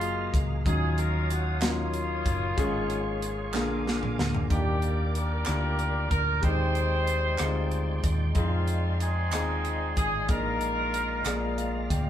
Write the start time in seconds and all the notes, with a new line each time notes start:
Already playing: F#1 F#3 G#3 A#3 F4 G#4 F5 A#5
0.01 closed hi-hat
0.34 C#2, kick, closed hi-hat
0.65 D#2 D#3 F#3 C#4 D#4 F4 G#4 C#5 D#6, kick, closed hi-hat
0.98 A#4, closed hi-hat
1.30 F#4, closed hi-hat
1.61 F#3 A#3 C#4 D#4 F4, snare, clap, closed hi-hat
1.94 closed hi-hat
2.26 F#1, kick, closed hi-hat
2.57 G#1 G#2 G#3 C#4 D#4 G#4 C#6, kick, closed hi-hat
2.65 F4
2.90 closed hi-hat
3.22 closed hi-hat
3.52 A#1 A#2 D3 A#3 F4 G#4 A#4 G#5 D6, snare, clap
3.87 snare
4.03 mid tom
4.19 D2, snare
4.35 floor tom
4.50 D#2 D#3 A#3 D4 F4 G4 A#4 D5 G5 D6, kick, closed hi-hat
4.58 G4
4.82 closed hi-hat
5.15 D4 G4 A#4, closed hi-hat
5.45 D2 A#3 D4 E4 G4, cross-stick, clap, closed hi-hat
5.55 F4
5.79 closed hi-hat
6.11 D2 A#4, kick, closed hi-hat
6.42 D#2 D#3 G#3 C4 D#4 G4 G#4 C5 G5 C6, kick, closed hi-hat
6.75 closed hi-hat
7.07 closed hi-hat
7.38 D2 G#3 C4 D#4 F4, cross-stick, clap, closed hi-hat
7.72 closed hi-hat
8.04 D#2, kick, closed hi-hat
8.34 F2 G#3 C4 D#4 F4 G#4 F5, kick, closed hi-hat
8.67 closed hi-hat
9.00 C4 D#4 G#4, closed hi-hat
9.32 D#2 C4 D#4 F4 G#4, cross-stick, clap, closed hi-hat
9.65 closed hi-hat
9.97 G#1 G#4, kick, closed hi-hat
10.28 A#1 A#2 A#3 D4 D#4 F4 G#4 A#4 A#5, kick, closed hi-hat
10.35 D#4
10.61 closed hi-hat
10.94 closed hi-hat
11.25 A#1 A#2 A#3 F4 G#4 D5 A#5, cross-stick, clap, closed hi-hat
11.58 F5, closed hi-hat
11.90 D2 G5, kick, closed hi-hat